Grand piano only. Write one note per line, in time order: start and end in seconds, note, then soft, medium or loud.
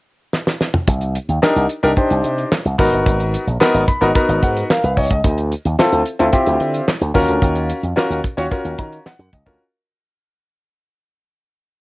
1.42 1.64 D4 medium
1.42 1.64 D#4 medium
1.42 1.64 G4 medium
1.42 1.64 A#4 loud
1.83 1.90 D4 loud
1.83 1.90 D#4 medium
1.83 1.90 G4 medium
1.83 1.91 A#4 loud
1.96 2.46 D4 medium
1.96 2.47 D#4 medium
1.96 2.47 G4 medium
1.96 2.47 C5 medium
2.78 3.44 B3 medium
2.78 3.44 D#4 medium
2.78 3.44 F#4 medium
2.78 3.44 A#4 medium
3.60 3.82 B3 loud
3.60 3.82 D#4 medium
3.60 3.82 F#4 medium
3.60 3.82 A#4 loud
3.88 4.13 B5 medium
4.01 4.08 B3 medium
4.01 4.08 D#4 medium
4.01 4.08 F#4 medium
4.01 4.09 A#4 loud
4.15 4.65 B3 medium
4.15 4.65 D#4 medium
4.15 4.65 F#4 medium
4.15 4.65 A#4 medium
4.15 4.40 A#5 medium
4.43 4.68 F#5 medium
4.70 4.83 A#4 medium
4.70 4.95 F5 medium
4.83 4.96 B4 medium
4.97 5.10 C#5 medium
4.97 5.09 D#5 medium
5.11 5.36 D#5 medium
5.79 6.00 C4 medium
5.79 6.00 E4 medium
5.79 6.00 F4 medium
5.79 6.00 A4 loud
6.19 6.27 C4 medium
6.19 6.27 E4 medium
6.19 6.27 F4 medium
6.19 6.27 A4 loud
6.33 6.83 C4 medium
6.33 6.83 E4 medium
6.33 6.83 F4 medium
6.33 6.83 G4 medium
7.14 7.80 C#4 medium
7.14 7.80 F4 medium
7.14 7.80 F#4 medium
7.14 7.80 A#4 loud
7.96 8.18 C#4 medium
7.96 8.18 F4 medium
7.96 8.18 F#4 medium
7.96 8.18 A#4 loud
8.37 8.45 C#4 medium
8.37 8.45 F4 medium
8.37 8.45 F#4 medium
8.37 8.45 C#5 loud
8.51 9.01 C#4 medium
8.51 9.01 F4 medium
8.51 9.01 F#4 medium
8.51 9.01 A#4 medium
8.78 9.04 A#5 medium
9.06 9.31 F#5 medium
9.33 9.58 D#5 medium
9.46 9.60 C#4 medium
9.46 9.60 F4 medium
9.46 9.60 F#4 medium
9.46 9.60 A#4 medium